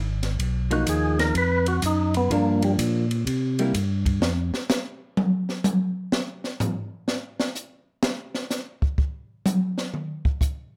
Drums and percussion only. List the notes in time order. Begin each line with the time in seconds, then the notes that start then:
0.23 snare, ride
0.39 kick, ride
0.71 ride
0.87 kick, hi-hat pedal, ride
1.19 snare, ride
1.35 kick, ride
1.66 ride
1.82 kick, hi-hat pedal, ride
2.14 ride
2.30 kick, ride
2.62 ride
2.78 kick, hi-hat pedal, ride
3.11 ride
3.26 kick, ride
3.59 ride
3.74 kick, hi-hat pedal, ride
4.06 kick, ride
4.22 snare
4.54 snare
4.70 snare, hi-hat pedal
5.17 high tom
5.49 snare
5.64 hi-hat pedal, high tom
6.12 snare
6.44 snare
6.60 floor tom, hi-hat pedal
7.08 snare
7.40 snare
7.55 hi-hat pedal
8.03 snare
8.35 snare
8.50 snare, hi-hat pedal
8.82 kick
8.98 kick
9.46 hi-hat pedal, high tom
9.78 snare
9.94 mid tom
10.25 kick
10.41 kick, hi-hat pedal